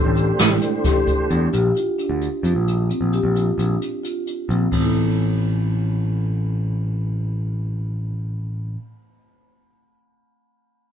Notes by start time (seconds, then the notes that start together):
Already playing: A3 D4 G4 C5
0.05 A1
0.15 G4, closed hi-hat
0.38 A1 E4, snare, closed hi-hat
0.61 closed hi-hat
0.84 G4, kick, snare, closed hi-hat
1.07 kick, closed hi-hat
1.29 E2 D4, closed hi-hat
1.53 A#1 G4, closed hi-hat
1.75 F4, closed hi-hat
1.99 D4, closed hi-hat
2.10 D2
2.21 closed hi-hat
2.43 F2 F4, closed hi-hat
2.55 A#1
2.68 closed hi-hat
2.90 C4, closed hi-hat
3.01 A#1
3.13 G4, closed hi-hat
3.23 A#1
3.35 F4, closed hi-hat
3.58 A#1 D4, closed hi-hat
3.82 closed hi-hat
4.04 F4, closed hi-hat
4.27 closed hi-hat
4.49 A#1 C4, closed hi-hat
4.72 A1 A3 C4, kick, ride
4.80 E4 A4